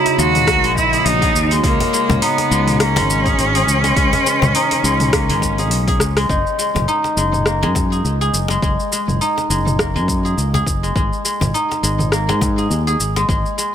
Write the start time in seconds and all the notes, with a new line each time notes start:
Already playing: C#3 G#3 A#3 D#4 E4 F#4 G#4 C#5
0.06 cajon slap, open hi-hat, shaker
0.18 D#2 G#3 F#4, shaker
0.35 mid tom, open hi-hat, shaker
0.47 A#3, kick, cross-stick, open hi-hat, shaker
0.64 A#1 G#3, open hi-hat, shaker
0.76 E4, kick, shaker
0.93 G#4, open hi-hat, shaker
1.05 A#1 D#4, open hi-hat, shaker
1.22 G#4, kick, open hi-hat, shaker
1.35 D#2, shaker
1.51 G#3, open hi-hat, shaker
1.63 C#2 C#3 G#3 A#3, kick, open hi-hat, shaker
1.80 cajon bass, open hi-hat, shaker
1.93 G#3, shaker
2.09 C#2, cajon bass, mid tom, shaker
2.22 B3 D#4, open hi-hat, shaker
2.38 cajon slap, open hi-hat, shaker
2.51 C#2 G#3, shaker
2.68 mid tom, open hi-hat, shaker
2.80 A#3 C#4, cross-stick, open hi-hat, shaker
2.96 G#1 G#3, cajon bass, cajon slap, open hi-hat, shaker
3.10 E3, shaker
3.25 G#4, kick, open hi-hat, shaker
3.38 G#1, open hi-hat, shaker
3.55 G#4, open hi-hat, shaker
3.67 C#2, shaker
3.84 G#3, cajon slap, open hi-hat, shaker
3.96 C#2 G#3, kick, open hi-hat, shaker
4.13 cajon bass, open hi-hat, shaker
4.26 G#3, shaker
4.42 C#2, cajon bass, mid tom, shaker
4.55 D#4, open hi-hat, shaker
4.71 cajon slap, open hi-hat, shaker
4.84 C#2 G#3, shaker
5.00 mid tom, open hi-hat, shaker
5.13 A#3, kick, cross-stick, open hi-hat, shaker
5.29 G#1 G#3, open hi-hat, shaker
5.42 kick, cajon slap, shaker
5.58 G#4, open hi-hat, shaker
5.71 B1, open hi-hat, shaker
5.88 G#4, kick, open hi-hat, shaker
6.00 C#2, cross-stick, cajon slap, shaker
6.17 G#3, cross-stick, open hi-hat, shaker
6.29 F#1 G#3 D#5, kick, shaker
6.47 shaker
6.59 G#3, shaker
6.75 F#1, cajon bass, mid tom, shaker
6.88 D#4, shaker
7.04 cajon slap, shaker
7.17 F#1 G#3, shaker
7.33 mid tom, shaker
7.46 A#3, cross-stick, shaker
7.62 F#2 G#3, cajon slap, shaker
7.75 kick, cajon bass, shaker
7.92 G#4, shaker
8.04 C#2, shaker
8.21 G#4, shaker
8.33 F#1, shaker
8.48 G#3, cajon slap, shaker
8.62 F#1 G#3, kick, shaker
8.80 shaker
8.92 G#3, shaker
9.08 F#1, mid tom, shaker
9.21 D#4, shaker
9.38 cajon slap, shaker
9.50 F#1 G#3, shaker
9.66 mid tom, shaker
9.79 A#3, kick, cross-stick, shaker
9.96 F#2 G#3, shaker
10.08 kick, shaker
10.25 G#4, shaker
10.37 C#2, shaker
10.54 G#4, cajon bass, shaker
10.66 F#1, kick, shaker
10.83 G#3, shaker
10.96 G#1 G#3, kick, shaker
11.13 shaker
11.25 G#3, shaker
11.41 G#1, cajon bass, mid tom, shaker
11.54 D#4, shaker
11.71 cajon slap, shaker
11.83 G#1 G#3, shaker
11.99 mid tom, shaker
12.12 A#3, cross-stick, shaker
12.29 G#2 G#3, cajon slap, shaker
12.41 kick, cajon bass, shaker
12.58 G#4, shaker
12.70 D#2, shaker
12.87 G#4, shaker
13.00 G#1, shaker
13.16 G#3, cajon slap, shaker
13.29 G#1 G#3, kick, shaker
13.46 shaker
13.58 G#3, shaker